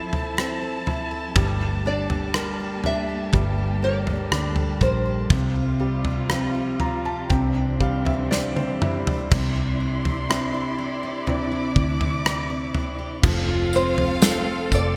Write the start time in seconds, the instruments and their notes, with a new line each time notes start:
Already playing: string section F3 E4 A5, felt piano F3 E4 A4 C5, steel-string acoustic guitar F3 C4 E4 A4
0.13 steel-string acoustic guitar E4, floor tom
0.37 steel-string acoustic guitar C4, felt piano C4, cross-stick
0.62 steel-string acoustic guitar A4
0.86 steel-string acoustic guitar E4, felt piano E4, floor tom
1.11 steel-string acoustic guitar A4
1.36 fingered electric bass G1, steel-string acoustic guitar G2, felt piano G3, string section A#3 G4, kick, floor tom
1.61 steel-string acoustic guitar D4
1.86 felt piano D4, steel-string acoustic guitar A4, nylon-string guitar D5
2.10 steel-string acoustic guitar D4, floor tom
2.34 steel-string acoustic guitar G3, felt piano A#4, cross-stick
2.60 steel-string acoustic guitar A4
2.84 steel-string acoustic guitar D4, felt piano D4, nylon-string guitar E5, floor tom
3.09 steel-string acoustic guitar A4
3.33 fingered electric bass G1, steel-string acoustic guitar G2, felt piano G3, kick, floor tom
3.58 steel-string acoustic guitar D4
3.82 steel-string acoustic guitar A4, felt piano A#4, nylon-string guitar D5
4.07 steel-string acoustic guitar D4, floor tom
4.31 fingered electric bass D2, steel-string acoustic guitar G3, felt piano D4, cross-stick
4.56 steel-string acoustic guitar A4, floor tom
4.81 fingered electric bass A#1, steel-string acoustic guitar D4, felt piano A#4, nylon-string guitar C5, kick, floor tom
5.06 steel-string acoustic guitar A4
5.29 fingered electric bass C2, steel-string acoustic guitar C3, string section C3 G3 F4, felt piano C3, kick, floor tom
5.55 steel-string acoustic guitar F4
5.80 felt piano G3, steel-string acoustic guitar G4
6.04 steel-string acoustic guitar F4, floor tom
6.29 steel-string acoustic guitar F3, felt piano C4, cross-stick
6.55 steel-string acoustic guitar G4
6.80 steel-string acoustic guitar F4, felt piano F4 A#5, floor tom
7.05 steel-string acoustic guitar G4, felt piano A5
7.29 fingered electric bass C2, steel-string acoustic guitar C3, felt piano C3 G5, string section E3 C4 D4, kick, floor tom
7.55 steel-string acoustic guitar D4
7.80 felt piano G3 F5, steel-string acoustic guitar G4, kick
8.05 steel-string acoustic guitar D4, felt piano E5, floor tom
8.31 steel-string acoustic guitar G3, felt piano C4 D5, snare
8.56 steel-string acoustic guitar G4, felt piano C5, high tom
8.81 steel-string acoustic guitar D4, felt piano E4 E5, mid tom
9.07 steel-string acoustic guitar G4, floor tom
9.31 fingered electric bass C2, steel-string acoustic guitar C3, felt piano C3, string section E4 D5 C6, kick, floor tom, crash
9.56 steel-string acoustic guitar C4
9.80 steel-string acoustic guitar D4
10.05 steel-string acoustic guitar C4, floor tom
10.29 felt piano C4 D4 E4, steel-string acoustic guitar G4, cross-stick
10.54 steel-string acoustic guitar C4
10.78 steel-string acoustic guitar D4
11.03 steel-string acoustic guitar G4
11.27 steel-string acoustic guitar C3, felt piano C4 D4 E4, string section D6, floor tom
11.52 steel-string acoustic guitar C4
11.76 fingered electric bass D2, steel-string acoustic guitar D4, kick
12.01 steel-string acoustic guitar C4, floor tom
12.25 steel-string acoustic guitar G4, cross-stick
12.50 steel-string acoustic guitar C4
12.74 steel-string acoustic guitar D4, floor tom
12.99 steel-string acoustic guitar G4
13.22 fingered electric bass F1, felt piano F3, steel-string acoustic guitar F3, string section A3 C4 A4, violin section F4 F5, kick, floor tom, crash
13.49 felt piano F4
13.73 felt piano C4, steel-string acoustic guitar E4, nylon-string guitar C5, tambourine
13.98 floor tom
14.22 felt piano A4, steel-string acoustic guitar A4, snare, tambourine
14.71 fingered electric bass F1, felt piano A4, nylon-string guitar D5, kick, tambourine